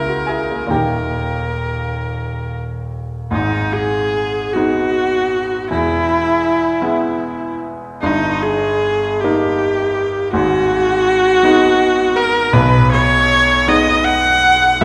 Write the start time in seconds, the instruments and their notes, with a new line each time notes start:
Already playing: grand piano C#2 A#3 E4 A#4 A#5, viola A#4
0.08 grand piano F#4
0.27 grand piano E4 G#4 G#5
0.51 grand piano A#3
0.67 grand piano D#1 D#2 A#3 D#4, viola A#4
0.71 grand piano G4 G5
3.31 grand piano G#1 G#2, viola D#4
3.73 viola G#4
4.53 grand piano G#3 B3 D#4, viola F#4
5.70 grand piano E1 E2, viola E4
6.81 grand piano G#3 B3 E4
8.01 grand piano G1 G2, viola D#4
8.42 viola G#4
9.21 grand piano A#3 D#4, viola G4
10.32 grand piano G#1 G#2, viola F#4
11.43 grand piano G#3 B3 D#4
12.16 viola A#4
12.53 grand piano B1 B2, viola B4
12.91 viola C#5
13.68 grand piano G#3 B3 D#4, viola D#5
14.04 viola F#5
14.81 grand piano C#1, viola E5